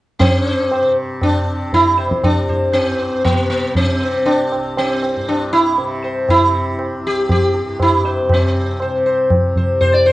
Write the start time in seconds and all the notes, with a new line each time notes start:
0.19 G2 C4, tabla na, tabla ge
0.48 C5
0.71 C5, tabla na
0.81 C3
1.21 D4, tabla na, tabla ge
1.45 C3
1.73 E4, tabla tin, tabla ge
1.98 C5, tabla na
2.07 C2
2.11 tabla ke
2.23 D4, tabla na, tabla ge
2.49 C5, tabla ge
2.69 G2
2.74 C4, tabla na
3.00 C5
3.25 B3, tabla na, tabla ge
3.30 C3
3.50 B3
3.75 C4, tabla tin, tabla ge
3.93 C3
4.02 C5
4.25 D4, tabla na
4.52 C2, tabla na
4.77 C4, tabla na
5.03 tabla na
5.16 G2
5.29 D4, tabla na
5.53 E4
5.78 C3, tabla tin
6.04 C5, tabla na
6.29 E4, tabla na, tabla ge
6.39 C3
6.79 tabla na
7.01 C2
7.07 G4
7.29 G4, tabla na, tabla ge
7.54 tabla te
7.61 G2
7.80 E4, tabla na, tabla ge
8.05 C5, tabla te
8.22 C3
8.29 tabla na, tabla ge
8.34 C4
8.80 C3 C5, tabla na
9.06 C5
9.30 tabla na, tabla ge
9.46 C2
9.56 C5, tabla ge
9.81 C5, tabla tin, tabla ge
9.94 D5
10.06 G2 C5